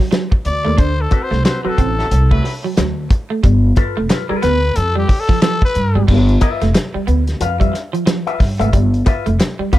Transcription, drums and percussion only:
0.12 snare, closed hi-hat
0.32 kick
0.45 closed hi-hat
0.78 kick, closed hi-hat
1.11 kick, closed hi-hat
1.32 snare
1.45 snare, clap, closed hi-hat
1.78 kick, closed hi-hat
1.99 snare
2.11 closed hi-hat
2.31 kick
2.44 snare, open hi-hat
2.77 snare, clap, closed hi-hat
3.10 kick, closed hi-hat
3.44 kick, closed hi-hat
3.76 kick, closed hi-hat
4.10 snare, clap, closed hi-hat
4.43 snare, closed hi-hat
4.76 closed hi-hat
5.09 kick, open hi-hat
5.29 kick, snare
5.42 snare, clap, closed hi-hat
5.62 kick
5.75 closed hi-hat
6.08 kick, crash
6.29 closed hi-hat
6.41 kick, clap, closed hi-hat
6.61 snare, closed hi-hat
6.75 snare, clap, closed hi-hat
7.08 closed hi-hat
7.27 snare, closed hi-hat
7.41 closed hi-hat
7.61 kick, closed hi-hat
7.74 snare, closed hi-hat
7.94 closed hi-hat
8.07 snare, clap, closed hi-hat
8.27 closed hi-hat
8.40 kick, snare, open hi-hat
8.61 closed hi-hat
8.73 kick, closed hi-hat
8.94 closed hi-hat
9.06 kick, clap, closed hi-hat
9.26 closed hi-hat
9.40 snare, clap, closed hi-hat
9.73 kick, snare, closed hi-hat

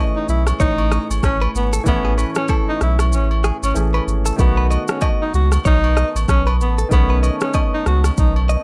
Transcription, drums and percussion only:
0.29 shaker
0.47 cross-stick, high agogo, shaker
0.60 kick, shaker
0.78 high agogo
0.92 cross-stick, shaker
1.11 high agogo, shaker
1.23 kick, cross-stick, low woodblock, shaker
1.42 high agogo
1.55 shaker
1.73 shaker
1.86 kick, high agogo, shaker
2.18 high agogo, shaker
2.35 cross-stick, shaker
2.48 kick, high agogo, low woodblock, shaker
2.81 cross-stick, shaker
2.99 cross-stick, high agogo, shaker
3.13 shaker
3.31 high agogo
3.44 cross-stick, shaker
3.63 high agogo, shaker
3.76 low woodblock, shaker
3.94 high agogo
4.08 shaker
4.26 shaker
4.39 kick, high agogo, shaker
4.71 high agogo, shaker
4.88 cross-stick, shaker
5.01 kick, high agogo, low woodblock, shaker
5.34 shaker
5.52 cross-stick, high agogo, shaker
5.65 kick, shaker
5.84 high agogo
5.97 cross-stick, shaker
6.16 high agogo, shaker
6.28 kick, cross-stick, low woodblock, shaker
6.47 high agogo
6.61 shaker
6.78 shaker
6.91 kick, high agogo, shaker
7.23 high agogo, shaker
7.41 cross-stick, shaker
7.54 kick, high agogo, low woodblock, shaker
7.86 cross-stick, shaker
8.04 cross-stick, high agogo, shaker
8.18 kick, shaker
8.36 high agogo
8.49 shaker

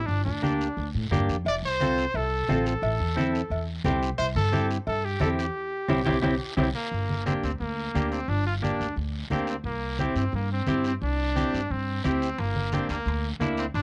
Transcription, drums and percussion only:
0.09 long guiro
0.27 low conga
0.43 high conga, short guiro
0.61 short guiro
0.79 long guiro
1.12 high conga, low conga, short guiro
1.29 short guiro
1.46 cowbell, long guiro
1.80 cowbell, high conga, short guiro
1.98 short guiro
2.15 cowbell, long guiro
2.48 cowbell, high conga, low timbale, short guiro
2.66 short guiro
2.83 cowbell, long guiro
3.17 cowbell, high conga, short guiro
3.35 short guiro
3.51 cowbell, long guiro
3.84 cowbell, high conga, low conga, low timbale, short guiro
4.03 short guiro
4.18 cowbell, long guiro
4.36 high conga
4.53 cowbell, high conga, short guiro
4.71 short guiro
4.87 cowbell, long guiro
5.20 cowbell, high conga, low timbale, short guiro
5.39 short guiro
5.89 high conga, high timbale, long guiro
6.06 high conga, high timbale, long guiro
6.23 high conga, high timbale, long guiro
6.57 high conga, high timbale, long guiro
6.92 long guiro
7.10 high conga
7.27 high conga, short guiro
7.44 short guiro
7.61 long guiro
7.95 high conga, short guiro
8.12 short guiro
8.30 long guiro
8.63 high conga, short guiro
8.81 short guiro
8.97 long guiro
9.30 high conga, short guiro
9.47 short guiro
9.64 long guiro
9.99 high conga, short guiro
10.16 short guiro
10.32 long guiro
10.67 high conga, short guiro
10.84 short guiro
11.02 long guiro
11.36 high conga, short guiro
11.55 short guiro
11.71 long guiro
12.04 high conga, short guiro
12.22 short guiro
12.38 high timbale, long guiro
12.55 high conga
12.72 high conga, high timbale, short guiro
12.89 high timbale, short guiro
13.06 high timbale, long guiro
13.41 high conga, high timbale, short guiro
13.57 high timbale, short guiro
13.74 high timbale, long guiro

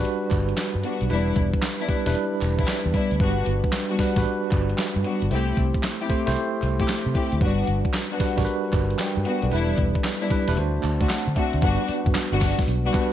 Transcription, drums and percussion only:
0.05 closed hi-hat
0.31 kick, clap, closed hi-hat
0.49 closed hi-hat
0.57 snare, clap, closed hi-hat
0.83 closed hi-hat
1.01 closed hi-hat
1.10 closed hi-hat
1.36 kick, closed hi-hat
1.54 kick, closed hi-hat
1.62 snare, clap, closed hi-hat
1.89 kick, closed hi-hat
2.06 snare, closed hi-hat
2.15 closed hi-hat
2.41 clap, closed hi-hat
2.59 kick, closed hi-hat
2.67 snare, clap, closed hi-hat
2.94 kick, closed hi-hat
3.11 closed hi-hat
3.20 kick, closed hi-hat
3.46 closed hi-hat
3.64 kick, closed hi-hat
3.72 snare, clap, closed hi-hat
3.99 kick, snare, closed hi-hat
4.16 kick, snare, closed hi-hat
4.26 closed hi-hat
4.51 kick, clap, closed hi-hat
4.69 closed hi-hat
4.78 snare, clap, closed hi-hat
5.04 closed hi-hat
5.22 closed hi-hat
5.31 closed hi-hat
5.57 kick, closed hi-hat
5.74 kick, closed hi-hat
5.83 snare, clap, closed hi-hat
6.10 kick, closed hi-hat
6.27 snare, closed hi-hat
6.36 closed hi-hat
6.62 clap, closed hi-hat
6.80 kick, closed hi-hat
6.88 snare, clap, closed hi-hat
7.15 kick, closed hi-hat
7.32 closed hi-hat
7.41 kick, closed hi-hat
7.67 closed hi-hat
7.85 kick, closed hi-hat
7.94 snare, clap, closed hi-hat
8.20 kick, snare, closed hi-hat
8.37 kick, snare, closed hi-hat
8.47 closed hi-hat
8.73 kick, clap, closed hi-hat
8.90 closed hi-hat
8.99 snare, clap, closed hi-hat
9.25 closed hi-hat
9.42 closed hi-hat
9.51 closed hi-hat
9.78 kick, closed hi-hat
9.95 kick, closed hi-hat
10.04 snare, clap, closed hi-hat
10.30 kick, closed hi-hat
10.48 snare, closed hi-hat
10.57 closed hi-hat
10.83 clap, closed hi-hat
11.01 kick, closed hi-hat
11.09 snare, clap, closed hi-hat
11.36 kick, closed hi-hat
11.53 closed hi-hat
11.62 kick, closed hi-hat
11.88 closed hi-hat, tambourine
12.06 kick, closed hi-hat
12.15 snare, clap, closed hi-hat, tambourine
12.41 kick, snare, open hi-hat, tambourine
12.59 kick, snare, closed hi-hat
12.68 closed hi-hat, tambourine
12.94 kick, clap, closed hi-hat, tambourine

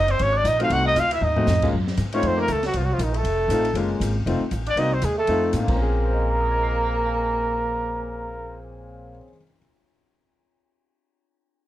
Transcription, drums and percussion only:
0.08 ride
0.19 ride
0.45 hi-hat pedal, ride
0.60 ride
0.71 ride
0.96 hi-hat pedal, ride
1.11 ride
1.22 floor tom
1.37 floor tom
1.47 snare, hi-hat pedal
1.62 kick, crash
1.87 snare
1.97 hi-hat pedal, ride
2.12 ride
2.23 ride
2.48 hi-hat pedal, ride
2.63 snare, ride
2.74 ride
2.99 hi-hat pedal, ride
3.14 ride
3.25 ride
3.50 hi-hat pedal, ride
3.65 ride
3.75 ride
4.01 hi-hat pedal, ride
4.27 ride
4.51 hi-hat pedal, ride
4.66 ride
4.77 ride
5.02 hi-hat pedal, ride
5.27 ride
5.53 hi-hat pedal, ride
5.68 kick, crash

